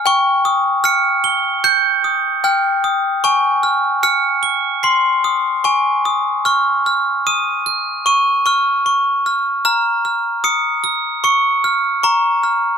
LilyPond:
\new Staff \with { instrumentName = "Glockenspiel" } { \time 4/4 \key des \major \tempo 4 = 75 << { g''8 ees'''8 des''''8 g''''8 des''''8 ees'''8 g''8 ees'''8 | aes''8 f'''8 des''''8 aes''''8 c''''8 ees'''8 aes''8 ees'''8 | des'''8 f'''8 ees''''8 c'''''8 ees''''8 f'''4 f'''8 | bes''8 f'''8 des''''8 bes''''8 des''''8 f'''8 bes''8 f'''8 | } \\ { des'''4 f'''4 g'''4 f'''8. r16 | des'''4 f'''4 c'''4 des'''4 | f'''4 ees'''4 des'''8 des'''8 des'''4 | f'''4 ees'''4 des'''4 des'''4 | } >> }